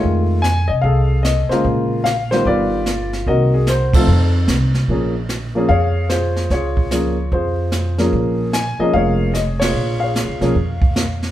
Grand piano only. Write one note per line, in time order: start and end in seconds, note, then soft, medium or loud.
0.00 0.41 D#3 medium
0.00 0.41 G#3 medium
0.00 0.42 A3 medium
0.00 0.42 F4 medium
0.42 0.68 G#5 loud
0.68 0.73 D#5 medium
0.82 1.61 G#4 medium
0.82 1.61 A4 medium
0.82 1.25 F5 medium
1.23 1.48 D#5 medium
1.49 2.02 C#3 medium
1.49 2.03 G#3 medium
1.49 2.03 A#3 medium
1.49 2.03 F4 medium
1.49 1.63 C5 medium
2.04 2.29 F5 loud
2.31 2.83 D#3 medium
2.31 2.84 G3 medium
2.31 2.84 B3 medium
2.31 2.47 F4 medium
2.31 2.44 C5 medium
2.47 3.24 F4 medium
2.47 3.23 B4 medium
2.47 3.09 D5 medium
3.27 3.51 D#3 soft
3.27 3.51 A#3 soft
3.27 3.51 C4 soft
3.27 4.04 F#4 medium
3.27 4.04 A#4 medium
3.27 3.52 D#5 medium
3.54 3.67 G#4 medium
3.70 3.96 C5 medium
3.94 4.07 F3 medium
3.94 4.07 A3 medium
3.94 4.72 C4 medium
3.94 4.72 D#4 medium
3.94 4.07 F4 medium
3.94 4.45 A4 medium
4.89 5.13 F3 medium
4.89 5.13 A#3 medium
4.89 5.13 C#4 medium
4.89 5.14 G#4 medium
5.55 5.68 F3 medium
5.55 5.68 A#3 medium
5.55 5.69 C#4 medium
5.55 5.69 G#4 medium
5.69 6.10 G#4 medium
5.69 6.47 C#5 medium
5.69 6.11 F5 loud
6.09 6.52 F4 medium
6.09 6.52 G#4 medium
6.09 6.47 C5 medium
6.51 7.29 F4 medium
6.51 6.92 G#4 medium
6.51 7.34 C#5 medium
6.91 7.15 F3 medium
6.91 7.15 A#3 soft
6.91 7.15 C#4 medium
6.91 7.16 G#4 medium
7.33 8.10 F4 medium
7.33 7.99 G#4 medium
7.33 7.95 C5 medium
7.98 8.50 F3 medium
7.98 8.50 A#3 medium
7.98 8.51 C#4 medium
7.98 8.51 G#4 medium
8.53 8.78 G#5 loud
8.79 9.31 F3 medium
8.79 9.31 A#3 medium
8.79 9.32 C#4 medium
8.79 8.95 G#4 medium
8.79 8.94 D#5 medium
8.93 9.63 G#4 medium
8.93 9.58 C#5 medium
8.93 9.31 F5 loud
9.34 9.40 D#5 medium
9.60 9.98 C#5 loud
9.64 10.39 F4 medium
9.64 10.02 G#4 medium
10.00 11.20 C#5 medium
10.00 11.18 F5 medium
10.04 10.42 G#4 medium
10.41 10.54 F3 medium
10.41 10.54 A#3 medium
10.41 10.54 C#4 medium
10.41 10.55 G#4 medium